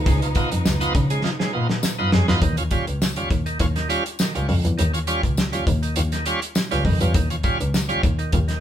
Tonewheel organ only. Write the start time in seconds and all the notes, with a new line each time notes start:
0.07 C#3 G#3
0.22 D#4 F4
0.35 B3 D#4 F4
0.80 B3 D#4 F4
1.11 C#3 G#3
1.24 D#4 F4
1.39 C#3 G#3
1.53 B3 D#4 F4
1.98 B3 D#4 F4
2.13 C#3 G#3
2.28 B3 D#4 F4
2.43 D#3
2.58 C#4 F4
2.71 G3 C#4 F4
3.17 G3 C#4 F4
3.46 D#3
3.60 C#4 F4
3.76 D#3
3.89 G3 C#4 F4
4.19 D#3
4.35 G3 C#4 F4
4.48 C#4 F4
4.78 D#3
4.94 C#4 F4
5.07 G3 C#4 F4
5.52 G3 C#4 F4
5.83 D#3
5.96 C#4 F4
6.13 D#3
6.26 G3 C#4 F4
6.71 G3 C#4 F4
6.86 D#3
7.00 G3 C#4 F4
7.15 D#3
7.30 C#4 F4
7.44 G3 C#4 F4
7.89 G3 C#4 F4
8.19 D#3
8.32 C#4 F4
8.48 D#3